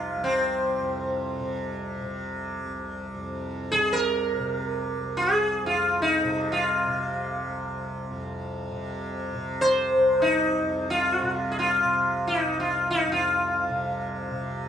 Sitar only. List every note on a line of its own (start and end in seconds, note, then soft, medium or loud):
0.00 0.23 F4 loud
0.24 1.54 C4 medium
3.72 3.94 G#4 medium
3.93 5.21 A#4 medium
5.17 5.66 G#4 medium
5.66 6.01 F4 medium
6.02 6.51 D#4 medium
6.52 8.39 F4 medium
9.61 10.23 C5 medium
10.22 10.90 D#4 medium
10.90 11.51 F4 medium
11.52 11.58 G#4 medium
11.59 12.27 F4 medium
12.27 12.59 D#4 medium
12.60 12.88 F4 medium
12.90 13.11 D#4 medium
13.12 14.63 F4 medium